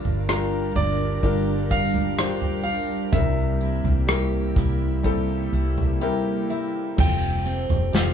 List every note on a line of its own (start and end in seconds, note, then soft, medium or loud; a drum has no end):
0.00 0.72 G2 medium
0.00 3.14 G2 medium
0.00 0.24 G3 medium
0.00 6.94 G3 medium
0.00 0.24 D4 medium
0.00 0.76 D4 medium
0.00 3.09 D4 medium
0.00 0.24 F4 medium
0.00 1.21 F4 medium
0.00 0.28 G4 medium
0.00 0.25 A#4 medium
0.00 3.09 A#4 medium
0.00 0.32 D5 medium
0.05 0.72 G1 medium
0.05 floor tom medium
0.28 1.18 G3 medium
0.28 1.19 D4 medium
0.28 1.19 F4 medium
0.28 1.23 G4 medium
0.28 0.78 A#4 medium
0.28 1.19 A#4 medium
0.28 cross-stick medium
0.75 1.20 G1 medium
0.75 1.70 D4 medium
0.75 1.67 D5 loud
0.75 floor tom medium
1.23 2.65 G1 loud
1.23 2.13 G3 medium
1.23 2.13 D4 medium
1.23 2.14 F4 medium
1.23 3.11 G4 medium
1.23 2.18 G4 medium
1.23 2.14 A#4 medium
1.23 kick medium
1.71 2.65 D4 medium
1.71 2.62 F5 loud
1.71 kick medium
1.94 floor tom medium
2.17 3.08 G3 medium
2.17 3.09 D4 medium
2.17 3.08 F4 medium
2.17 4.08 G4 medium
2.17 3.09 C5 medium
2.17 cross-stick loud
2.42 floor tom medium
2.64 3.10 A#1 medium
2.64 3.23 D4 medium
2.64 3.14 F5 medium
3.12 3.81 C2 loud
3.12 4.52 C3 medium
3.12 6.95 C3 medium
3.12 6.98 C3 medium
3.12 4.03 G3 medium
3.12 5.03 A#3 medium
3.12 4.03 C4 medium
3.12 4.04 E4 medium
3.12 6.95 E4 medium
3.12 4.04 A#4 medium
3.12 6.46 E5 medium
3.12 kick medium
3.12 floor tom medium
3.61 4.55 E4 medium
3.84 4.52 C2 medium
3.84 floor tom medium
4.07 4.99 G3 medium
4.07 4.99 C4 medium
4.07 5.00 E4 medium
4.07 5.04 G4 medium
4.07 5.00 A#4 medium
4.07 cross-stick loud
4.56 5.49 C2 loud
4.56 5.52 E4 medium
4.56 kick medium
4.56 floor tom medium
5.03 5.96 G3 medium
5.03 6.96 A#3 medium
5.03 5.97 C4 medium
5.03 5.97 E4 medium
5.03 6.01 G4 medium
5.03 5.97 A4 loud
5.03 kick medium
5.53 5.98 C2 medium
5.53 6.49 E4 medium
5.78 floor tom medium
6.01 6.93 G3 medium
6.01 6.93 C4 medium
6.01 6.94 E4 medium
6.01 6.99 G4 medium
6.01 6.94 A#4 medium
6.01 6.47 G5 medium
6.50 7.08 E4 medium
6.50 6.95 E5 medium
6.97 7.66 F1 loud
6.97 8.14 F3 medium
6.97 7.88 G3 medium
6.97 7.89 C4 medium
6.97 8.14 C4 medium
6.97 7.89 F4 medium
6.97 8.14 G4 medium
6.97 7.93 G4 medium
6.97 8.14 A4 medium
6.97 7.89 A4 medium
6.97 7.98 G5 loud
6.97 kick loud
6.97 floor tom loud
6.97 crash medium
6.97 shaker medium
7.23 shaker soft
7.46 8.14 C4 medium
7.46 shaker soft
7.69 7.92 F1 medium
7.69 floor tom medium
7.69 shaker soft
7.93 8.14 F1 medium
7.93 8.14 G3 medium
7.93 8.14 C4 medium
7.93 8.14 F4 medium
7.93 8.14 G4 medium
7.93 8.14 F5 medium
7.93 snare loud
7.93 shaker medium